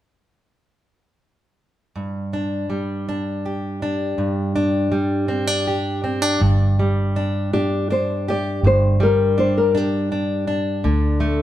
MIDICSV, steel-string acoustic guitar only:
0, 0, Header, 1, 2, 480
1, 0, Start_track
1, 0, Tempo, 740741
1, 1266, Time_signature, 6, 3, 24, 8
1, 7400, End_track
2, 0, Start_track
2, 0, Title_t, "Steel-string acoustic guitar"
2, 0, Program_c, 0, 25
2, 1267, Note_on_c, 0, 43, 40
2, 1512, Note_on_c, 0, 62, 37
2, 1747, Note_on_c, 0, 55, 38
2, 1997, Note_off_c, 0, 62, 0
2, 2000, Note_on_c, 0, 62, 40
2, 2239, Note_on_c, 0, 67, 34
2, 2475, Note_off_c, 0, 62, 0
2, 2478, Note_on_c, 0, 62, 41
2, 2706, Note_off_c, 0, 43, 0
2, 2709, Note_on_c, 0, 43, 46
2, 2949, Note_off_c, 0, 62, 0
2, 2952, Note_on_c, 0, 62, 42
2, 3178, Note_off_c, 0, 55, 0
2, 3186, Note_on_c, 0, 55, 43
2, 3421, Note_off_c, 0, 62, 0
2, 3424, Note_on_c, 0, 60, 40
2, 3547, Note_off_c, 0, 60, 0
2, 3547, Note_on_c, 0, 62, 33
2, 3675, Note_off_c, 0, 67, 0
2, 3677, Note_on_c, 0, 67, 34
2, 3908, Note_off_c, 0, 62, 0
2, 3912, Note_on_c, 0, 60, 41
2, 4030, Note_off_c, 0, 60, 0
2, 4030, Note_on_c, 0, 62, 32
2, 4125, Note_off_c, 0, 67, 0
2, 4143, Note_off_c, 0, 43, 0
2, 4150, Note_off_c, 0, 62, 0
2, 4150, Note_on_c, 0, 43, 45
2, 4395, Note_off_c, 0, 55, 0
2, 4403, Note_on_c, 0, 55, 41
2, 4641, Note_on_c, 0, 62, 42
2, 4880, Note_off_c, 0, 62, 0
2, 4883, Note_on_c, 0, 62, 47
2, 5120, Note_off_c, 0, 62, 0
2, 5122, Note_on_c, 0, 62, 39
2, 5368, Note_on_c, 0, 67, 46
2, 5569, Note_off_c, 0, 67, 0
2, 5590, Note_off_c, 0, 43, 0
2, 5601, Note_on_c, 0, 43, 55
2, 5825, Note_off_c, 0, 55, 0
2, 5833, Note_on_c, 0, 55, 50
2, 6074, Note_off_c, 0, 62, 0
2, 6077, Note_on_c, 0, 62, 44
2, 6313, Note_off_c, 0, 62, 0
2, 6316, Note_on_c, 0, 62, 48
2, 6554, Note_off_c, 0, 62, 0
2, 6557, Note_on_c, 0, 62, 45
2, 6785, Note_off_c, 0, 62, 0
2, 6788, Note_on_c, 0, 62, 48
2, 7025, Note_off_c, 0, 55, 0
2, 7026, Note_on_c, 0, 50, 55
2, 7028, Note_off_c, 0, 43, 0
2, 7260, Note_on_c, 0, 57, 47
2, 7400, Note_off_c, 0, 50, 0
2, 7400, Note_off_c, 0, 57, 0
2, 7400, Note_off_c, 0, 62, 0
2, 7400, End_track
0, 0, End_of_file